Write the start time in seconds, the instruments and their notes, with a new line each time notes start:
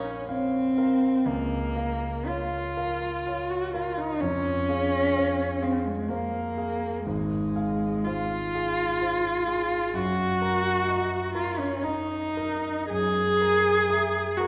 Already playing: grand piano A#1 A#4 C#5 F5, cello C#4
0.28 cello C4, grand piano C#5 F5
0.78 grand piano A#4 F5
1.26 grand piano C#2, cello A#3
1.76 grand piano A#4 F5
2.27 cello F4, grand piano C#5 F5
2.77 grand piano A#4 F5
3.27 grand piano C#5 F5
3.50 cello F#4
3.74 cello F4, grand piano A#4 F5
3.97 cello D#4
4.21 grand piano F2, cello C#4
4.69 grand piano G#4 F5
5.16 grand piano C5 F5
5.62 cello C4, grand piano G#4 F5
5.85 cello G#3
6.08 cello A#3, grand piano C5 F5
6.57 grand piano G#4 F5
7.06 grand piano G#1, cello G#3
7.56 grand piano G#4 F5
8.05 cello F4, grand piano C5 F5
8.55 grand piano G#4 F5
9.01 grand piano C5 F5
9.48 grand piano G#4 F5
9.94 grand piano F#2, cello F#4
10.42 grand piano A#4 A#5
10.88 grand piano D#5 A#5
11.35 cello F4, grand piano A#4 A#5
11.60 cello C#4
11.83 cello D#4, grand piano D#5 A#5
12.37 grand piano A#4 A#5
12.90 grand piano F#2, cello G#4
13.41 grand piano A#4 A#5
13.90 grand piano E5 A#5
14.37 cello F#4, grand piano A#4 A#5